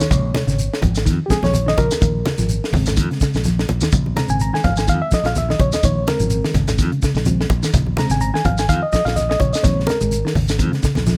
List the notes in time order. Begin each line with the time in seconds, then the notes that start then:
Already playing: C#5
0.00 snare, high conga, shekere
0.09 A#1 C3 C#3 G#3, kick, closed hi-hat, low conga, shekere
0.34 C3, snare, closed hi-hat, high conga, shekere
0.47 G#1 C#3, snare, shekere
0.59 closed hi-hat, shekere
0.74 snare
0.82 G#1 F3, kick, closed hi-hat, high conga, low conga, shekere
0.95 snare, closed hi-hat, shekere
1.06 F2 D#3, kick, snare, closed hi-hat, shekere
1.26 C#3 F3 G#3 C4 G4, muted fingered electric bass stroke
1.30 G#4, kick, snare, closed hi-hat, shekere
1.43 A#1 F3 C#5, snare, closed hi-hat, high conga, shekere
1.54 closed hi-hat, high conga, shekere
1.66 D#3 D#5, snare
1.77 A#1 C#3 A#4, kick, closed hi-hat, high conga, shekere
1.91 snare, closed hi-hat, high conga, shekere
2.01 A#1 D#3, kick, closed hi-hat, low conga, shekere
2.25 C#3, snare, closed hi-hat, high conga, shekere
2.38 G#1 F3, snare, closed hi-hat, shekere
2.49 closed hi-hat, shekere
2.64 snare
2.72 G#1 C#3 G#3 C4, snare, open hi-hat, high conga, low conga, shekere
2.86 snare, closed hi-hat, low conga, shekere
2.96 F2 D#3, kick, closed hi-hat, shekere
3.11 C#3, snare, closed hi-hat
3.20 C#3, muted fingered electric bass stroke, kick, snare, closed hi-hat, shekere
3.34 A#1, snare, shekere
3.44 F3, snare, closed hi-hat, high conga, shekere
3.59 snare
3.68 A#1, closed hi-hat, high conga, shekere
3.81 D#3, snare, high conga, shekere
3.92 A#1 C#3, kick, closed hi-hat, low conga, shekere
4.06 high conga
4.15 C3 C#3 G#3 C4 A#5, snare, closed hi-hat, high conga, shekere
4.29 G#1 C#3 G#5, shekere
4.40 A#5, closed hi-hat, shekere
4.53 D#3 G#5, snare
4.64 G#1 F3 F5, kick, snare, closed hi-hat, high conga, low conga, shekere
4.77 G#5, snare, closed hi-hat, shekere
4.88 F2 D#3 F5, kick, closed hi-hat, shekere
5.02 E5
5.11 F3 D#5, muted fingered electric bass stroke, kick, snare, closed hi-hat, shekere
5.24 A#1 F3 F5, snare, closed hi-hat, shekere
5.35 E5, snare, closed hi-hat, high conga, shekere
5.49 D#3 D#5, snare
5.59 A#1 C#3 C#5, kick, closed hi-hat, high conga, shekere
5.72 D#5, snare, closed hi-hat, high conga, shekere
5.83 A#1 D#3 C#5, kick, closed hi-hat, low conga, shekere
6.07 C#3 G#3 C4 A#4, snare, closed hi-hat, high conga, shekere
6.20 G#1 F3, closed hi-hat, shekere
6.30 closed hi-hat, shekere
6.44 D#3, snare
6.54 G#1 C#3, kick, snare, closed hi-hat, high conga, low conga, shekere
6.67 snare, closed hi-hat, low conga, shekere
6.78 F2 D#3, kick, snare, closed hi-hat, shekere
6.92 C#3, closed hi-hat
7.02 C#3, muted fingered electric bass stroke, kick, snare, closed hi-hat, shekere
7.15 A#1, snare, shekere
7.25 C#3 F3 G#3 C4, closed hi-hat, high conga, shekere
7.41 snare
7.50 A#1, kick, closed hi-hat, high conga, shekere
7.63 D#3, snare, shekere
7.73 A#1 C#3, kick, snare, closed hi-hat, low conga, shekere
7.86 high conga
7.97 C3 C#3 G#3 C4 A#5, snare, closed hi-hat, high conga, shekere
8.10 G#1 C#3 G#5, snare, shekere
8.21 A#5, closed hi-hat, shekere
8.34 D#3 G#5, snare
8.45 G#1 F3 F5, kick, closed hi-hat, high conga, low conga, shekere
8.58 G#5, snare, closed hi-hat, shekere
8.69 F2 D#3 F5, kick, closed hi-hat, shekere
8.83 D#5
8.93 F3 D#5, muted fingered electric bass stroke, kick, snare, closed hi-hat, shekere
9.05 A#1 F3 F5, snare, closed hi-hat, shekere
9.16 D#5, snare, closed hi-hat, high conga, shekere
9.29 D#5, muted clean electric guitar stroke, snare
9.40 A#1 C#3 C#5, kick, closed hi-hat, high conga, shekere
9.53 D#5, snare, closed hi-hat, shekere
9.62 A#1 C#3 D#3 G#3 C4 C#5, kick, closed hi-hat, low conga, shekere
9.66 snare
9.80 snare
9.87 A#4, muted clean electric guitar stroke, snare, closed hi-hat, high conga, shekere
10.01 G#1 G#3, closed hi-hat, shekere
10.12 closed hi-hat, shekere
10.25 D#3, snare
10.35 G#1 C#3, open hi-hat, high conga, low conga, shekere
10.49 snare, closed hi-hat, shekere
10.58 F2 C#3 D#3 G#3 C4, kick, closed hi-hat, shekere
10.72 C#3, snare, closed hi-hat
10.83 C#3, muted fingered electric bass stroke, kick, snare, closed hi-hat, shekere
10.95 A#1, snare, high conga, shekere
11.06 F3, snare, high conga, shekere